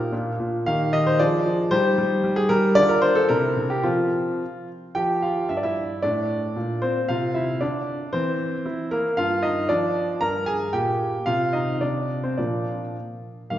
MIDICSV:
0, 0, Header, 1, 2, 480
1, 0, Start_track
1, 0, Tempo, 530035
1, 603, Time_signature, 2, 2, 24, 8
1, 2983, Tempo, 546946
1, 5383, Tempo, 524017
1, 10183, Tempo, 559701
1, 12170, End_track
2, 0, Start_track
2, 0, Title_t, "Grand piano"
2, 0, Program_c, 0, 0
2, 0, Control_c, 0, 64, 127
2, 0, Note_on_c, 0, 46, 51
2, 0, Note_on_c, 0, 63, 43
2, 0, Note_on_c, 0, 67, 43
2, 0, Note_on_c, 0, 70, 80
2, 97, Note_off_c, 0, 46, 0
2, 105, Note_off_c, 0, 70, 0
2, 110, Note_on_c, 0, 62, 36
2, 111, Note_on_c, 0, 46, 56
2, 112, Note_on_c, 0, 65, 39
2, 120, Control_c, 0, 64, 0
2, 128, Note_off_c, 0, 63, 0
2, 129, Note_off_c, 0, 67, 0
2, 268, Control_c, 0, 64, 127
2, 345, Note_off_c, 0, 46, 0
2, 359, Note_on_c, 0, 46, 51
2, 570, Note_off_c, 0, 62, 0
2, 571, Note_off_c, 0, 65, 0
2, 597, Note_off_c, 0, 46, 0
2, 601, Note_on_c, 0, 77, 92
2, 606, Note_on_c, 0, 51, 63
2, 606, Note_on_c, 0, 58, 45
2, 606, Note_on_c, 0, 67, 44
2, 612, Control_c, 0, 64, 0
2, 787, Control_c, 0, 64, 127
2, 833, Note_off_c, 0, 51, 0
2, 841, Note_on_c, 0, 75, 83
2, 843, Note_off_c, 0, 77, 0
2, 846, Note_on_c, 0, 51, 53
2, 962, Note_off_c, 0, 75, 0
2, 965, Note_on_c, 0, 72, 86
2, 1051, Note_off_c, 0, 58, 0
2, 1051, Note_off_c, 0, 67, 0
2, 1077, Note_off_c, 0, 51, 0
2, 1082, Note_on_c, 0, 74, 88
2, 1083, Note_off_c, 0, 72, 0
2, 1089, Note_on_c, 0, 68, 44
2, 1090, Note_on_c, 0, 53, 62
2, 1090, Note_on_c, 0, 62, 42
2, 1094, Control_c, 0, 64, 0
2, 1233, Control_c, 0, 64, 127
2, 1310, Note_off_c, 0, 53, 0
2, 1324, Note_on_c, 0, 53, 56
2, 1524, Note_off_c, 0, 68, 0
2, 1525, Note_off_c, 0, 62, 0
2, 1548, Note_on_c, 0, 72, 105
2, 1549, Note_off_c, 0, 53, 0
2, 1554, Note_off_c, 0, 74, 0
2, 1555, Note_on_c, 0, 55, 66
2, 1555, Note_on_c, 0, 63, 47
2, 1557, Note_on_c, 0, 67, 47
2, 1565, Control_c, 0, 64, 0
2, 1737, Control_c, 0, 64, 127
2, 1780, Note_off_c, 0, 55, 0
2, 1794, Note_on_c, 0, 55, 65
2, 2013, Note_off_c, 0, 55, 0
2, 2027, Note_on_c, 0, 55, 59
2, 2036, Control_c, 0, 64, 0
2, 2138, Note_off_c, 0, 72, 0
2, 2140, Note_on_c, 0, 68, 90
2, 2250, Note_off_c, 0, 55, 0
2, 2256, Note_on_c, 0, 70, 107
2, 2259, Note_off_c, 0, 68, 0
2, 2264, Note_on_c, 0, 55, 66
2, 2462, Note_off_c, 0, 63, 0
2, 2463, Note_off_c, 0, 67, 0
2, 2492, Note_on_c, 0, 74, 121
2, 2493, Note_off_c, 0, 55, 0
2, 2496, Note_off_c, 0, 70, 0
2, 2497, Note_on_c, 0, 62, 53
2, 2498, Note_on_c, 0, 65, 53
2, 2499, Note_on_c, 0, 50, 72
2, 2615, Note_off_c, 0, 74, 0
2, 2615, Note_on_c, 0, 70, 94
2, 2662, Control_c, 0, 64, 127
2, 2727, Note_off_c, 0, 50, 0
2, 2732, Note_on_c, 0, 72, 99
2, 2737, Note_off_c, 0, 70, 0
2, 2741, Note_on_c, 0, 50, 66
2, 2856, Note_off_c, 0, 72, 0
2, 2856, Note_on_c, 0, 69, 92
2, 2948, Note_off_c, 0, 62, 0
2, 2948, Note_off_c, 0, 65, 0
2, 2976, Note_off_c, 0, 50, 0
2, 2976, Note_on_c, 0, 70, 96
2, 2980, Note_off_c, 0, 69, 0
2, 2981, Note_on_c, 0, 62, 47
2, 2982, Note_on_c, 0, 64, 46
2, 2984, Note_on_c, 0, 48, 64
2, 2988, Control_c, 0, 64, 0
2, 3166, Control_c, 0, 64, 127
2, 3209, Note_off_c, 0, 48, 0
2, 3222, Note_on_c, 0, 48, 58
2, 3338, Note_on_c, 0, 67, 77
2, 3341, Note_off_c, 0, 70, 0
2, 3433, Note_off_c, 0, 62, 0
2, 3433, Note_off_c, 0, 64, 0
2, 3456, Note_on_c, 0, 65, 74
2, 3459, Note_off_c, 0, 48, 0
2, 3462, Note_on_c, 0, 53, 53
2, 3462, Note_on_c, 0, 60, 45
2, 3464, Note_off_c, 0, 67, 0
2, 3476, Control_c, 0, 64, 0
2, 3662, Control_c, 0, 64, 127
2, 3807, Note_off_c, 0, 53, 0
2, 3856, Note_off_c, 0, 60, 0
2, 3971, Control_c, 0, 64, 0
2, 4196, Note_off_c, 0, 65, 0
2, 4435, Note_on_c, 0, 79, 86
2, 4441, Note_on_c, 0, 53, 54
2, 4445, Note_on_c, 0, 67, 63
2, 4598, Control_c, 0, 64, 127
2, 4663, Note_off_c, 0, 67, 0
2, 4675, Note_off_c, 0, 79, 0
2, 4676, Note_on_c, 0, 77, 62
2, 4686, Note_on_c, 0, 65, 44
2, 4818, Note_off_c, 0, 53, 0
2, 4901, Note_off_c, 0, 65, 0
2, 4911, Note_on_c, 0, 76, 68
2, 4913, Note_off_c, 0, 77, 0
2, 4918, Note_on_c, 0, 43, 45
2, 4921, Control_c, 0, 64, 0
2, 4974, Note_off_c, 0, 76, 0
2, 4981, Note_on_c, 0, 74, 60
2, 5035, Note_on_c, 0, 76, 71
2, 5040, Note_off_c, 0, 74, 0
2, 5045, Note_on_c, 0, 64, 54
2, 5065, Control_c, 0, 64, 127
2, 5291, Note_off_c, 0, 43, 0
2, 5361, Note_off_c, 0, 64, 0
2, 5380, Note_off_c, 0, 76, 0
2, 5380, Note_on_c, 0, 74, 78
2, 5388, Note_on_c, 0, 45, 53
2, 5390, Control_c, 0, 64, 0
2, 5394, Note_on_c, 0, 62, 59
2, 5535, Control_c, 0, 64, 127
2, 5772, Note_off_c, 0, 45, 0
2, 5873, Note_on_c, 0, 46, 47
2, 5877, Control_c, 0, 64, 0
2, 6076, Note_off_c, 0, 62, 0
2, 6105, Note_off_c, 0, 74, 0
2, 6106, Note_on_c, 0, 72, 76
2, 6117, Note_on_c, 0, 60, 54
2, 6258, Note_off_c, 0, 46, 0
2, 6338, Note_off_c, 0, 60, 0
2, 6349, Note_off_c, 0, 72, 0
2, 6351, Note_on_c, 0, 77, 84
2, 6359, Note_on_c, 0, 48, 51
2, 6363, Note_on_c, 0, 65, 63
2, 6532, Control_c, 0, 64, 127
2, 6583, Note_off_c, 0, 65, 0
2, 6587, Note_on_c, 0, 76, 62
2, 6594, Note_off_c, 0, 77, 0
2, 6599, Note_on_c, 0, 64, 50
2, 6741, Note_off_c, 0, 48, 0
2, 6818, Note_off_c, 0, 64, 0
2, 6828, Note_on_c, 0, 74, 70
2, 6829, Note_off_c, 0, 76, 0
2, 6835, Note_on_c, 0, 50, 48
2, 6840, Note_on_c, 0, 62, 59
2, 6845, Control_c, 0, 64, 0
2, 6983, Control_c, 0, 64, 127
2, 7213, Note_off_c, 0, 50, 0
2, 7276, Note_off_c, 0, 62, 0
2, 7303, Note_off_c, 0, 74, 0
2, 7304, Note_on_c, 0, 72, 84
2, 7313, Note_on_c, 0, 52, 56
2, 7316, Control_c, 0, 64, 0
2, 7316, Note_on_c, 0, 60, 65
2, 7499, Control_c, 0, 64, 127
2, 7693, Note_off_c, 0, 52, 0
2, 7789, Note_on_c, 0, 64, 51
2, 7792, Control_c, 0, 64, 0
2, 7992, Note_off_c, 0, 60, 0
2, 8023, Note_off_c, 0, 72, 0
2, 8024, Note_on_c, 0, 70, 83
2, 8035, Note_on_c, 0, 58, 61
2, 8169, Note_off_c, 0, 64, 0
2, 8251, Note_off_c, 0, 58, 0
2, 8261, Note_on_c, 0, 77, 92
2, 8262, Note_off_c, 0, 70, 0
2, 8268, Note_on_c, 0, 43, 63
2, 8271, Note_on_c, 0, 65, 76
2, 8446, Control_c, 0, 64, 127
2, 8489, Note_off_c, 0, 65, 0
2, 8495, Note_on_c, 0, 75, 74
2, 8500, Note_off_c, 0, 77, 0
2, 8506, Note_on_c, 0, 63, 55
2, 8647, Note_off_c, 0, 43, 0
2, 8726, Note_off_c, 0, 63, 0
2, 8735, Note_on_c, 0, 74, 84
2, 8736, Note_off_c, 0, 75, 0
2, 8741, Note_on_c, 0, 53, 55
2, 8746, Note_on_c, 0, 62, 62
2, 8749, Control_c, 0, 64, 0
2, 8911, Control_c, 0, 64, 127
2, 9121, Note_off_c, 0, 53, 0
2, 9186, Note_off_c, 0, 62, 0
2, 9210, Note_on_c, 0, 82, 94
2, 9213, Note_off_c, 0, 74, 0
2, 9216, Note_on_c, 0, 43, 62
2, 9223, Note_on_c, 0, 70, 71
2, 9224, Control_c, 0, 64, 0
2, 9390, Control_c, 0, 64, 127
2, 9441, Note_off_c, 0, 70, 0
2, 9445, Note_on_c, 0, 80, 83
2, 9451, Note_off_c, 0, 82, 0
2, 9457, Note_on_c, 0, 68, 65
2, 9599, Note_off_c, 0, 43, 0
2, 9680, Note_off_c, 0, 68, 0
2, 9689, Note_on_c, 0, 79, 85
2, 9690, Note_off_c, 0, 80, 0
2, 9694, Note_on_c, 0, 46, 54
2, 9698, Note_on_c, 0, 67, 64
2, 9706, Control_c, 0, 64, 0
2, 10084, Note_off_c, 0, 46, 0
2, 10149, Note_off_c, 0, 67, 0
2, 10173, Note_on_c, 0, 77, 89
2, 10178, Note_off_c, 0, 79, 0
2, 10181, Note_on_c, 0, 48, 60
2, 10183, Note_on_c, 0, 65, 67
2, 10338, Control_c, 0, 64, 127
2, 10398, Note_off_c, 0, 65, 0
2, 10406, Note_on_c, 0, 75, 62
2, 10410, Note_off_c, 0, 77, 0
2, 10417, Note_on_c, 0, 63, 50
2, 10556, Note_off_c, 0, 48, 0
2, 10635, Note_off_c, 0, 63, 0
2, 10646, Note_off_c, 0, 75, 0
2, 10646, Note_on_c, 0, 74, 65
2, 10650, Note_on_c, 0, 48, 45
2, 10657, Note_on_c, 0, 62, 51
2, 10658, Control_c, 0, 64, 0
2, 10853, Control_c, 0, 64, 127
2, 10990, Note_off_c, 0, 62, 0
2, 11009, Note_off_c, 0, 74, 0
2, 11012, Note_on_c, 0, 72, 55
2, 11020, Note_on_c, 0, 60, 44
2, 11036, Note_off_c, 0, 48, 0
2, 11129, Note_off_c, 0, 60, 0
2, 11132, Note_on_c, 0, 74, 54
2, 11133, Note_off_c, 0, 72, 0
2, 11140, Note_on_c, 0, 58, 32
2, 11141, Control_c, 0, 64, 0
2, 11141, Note_on_c, 0, 53, 33
2, 11142, Note_on_c, 0, 46, 40
2, 11144, Note_on_c, 0, 62, 44
2, 11343, Control_c, 0, 64, 127
2, 11481, Note_off_c, 0, 46, 0
2, 11529, Note_off_c, 0, 53, 0
2, 11529, Note_off_c, 0, 58, 0
2, 11594, Note_off_c, 0, 62, 0
2, 11622, Note_off_c, 0, 74, 0
2, 11631, Control_c, 0, 64, 0
2, 12099, Note_on_c, 0, 77, 72
2, 12106, Note_on_c, 0, 55, 30
2, 12106, Note_on_c, 0, 58, 28
2, 12107, Note_on_c, 0, 51, 40
2, 12170, Note_off_c, 0, 51, 0
2, 12170, Note_off_c, 0, 55, 0
2, 12170, Note_off_c, 0, 58, 0
2, 12170, Note_off_c, 0, 77, 0
2, 12170, End_track
0, 0, End_of_file